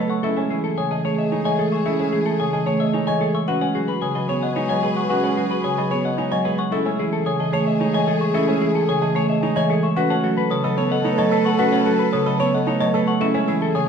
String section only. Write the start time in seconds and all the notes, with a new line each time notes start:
0.24 A3 G#4
3.47 G#4 B4
6.71 A3 G#4
9.96 A4 B4
13.20 A3 G#4